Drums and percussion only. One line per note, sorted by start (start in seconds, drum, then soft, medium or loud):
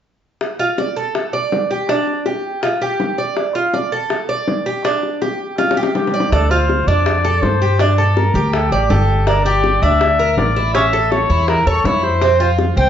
0.41 high bongo medium
0.60 high bongo soft
0.78 high bongo medium
1.15 high bongo medium
1.34 high bongo soft
1.52 high bongo soft
1.52 low bongo medium
1.71 high bongo soft
1.89 high bongo soft
2.07 high bongo soft
2.26 high bongo soft
2.63 high bongo medium
2.81 high bongo soft
3.00 high bongo soft
3.00 low bongo medium
3.18 high bongo soft
3.37 high bongo medium
3.55 high bongo soft
3.74 high bongo soft
4.10 high bongo medium
4.29 high bongo soft
4.48 high bongo soft
4.48 low bongo medium
4.66 high bongo soft
4.85 high bongo medium
5.03 high bongo soft
5.22 high bongo medium
5.58 high bongo medium
5.71 high bongo medium
5.83 high bongo medium
5.95 low bongo medium
6.07 low bongo medium
6.20 low bongo medium
6.32 high bongo medium
6.51 high bongo soft
6.69 high bongo medium
7.06 high bongo medium
7.25 high bongo soft
7.43 high bongo soft
7.43 low bongo medium
7.62 high bongo soft
7.79 high bongo medium
7.98 high bongo soft
8.17 high bongo medium
8.53 high bongo medium
8.72 high bongo soft
8.90 high bongo soft
8.90 low bongo medium
9.09 high bongo soft
9.27 high bongo medium
9.45 high bongo soft
9.64 high bongo medium
10.01 high bongo medium
10.19 high bongo soft
10.38 high bongo soft
10.38 low bongo medium
10.56 high bongo soft
10.75 high bongo medium
10.93 high bongo soft
11.12 high bongo medium
11.48 high bongo medium
11.67 high bongo soft
11.85 high bongo soft
11.85 low bongo medium
12.03 high bongo soft
12.22 high bongo medium
12.40 high bongo soft
12.59 high bongo medium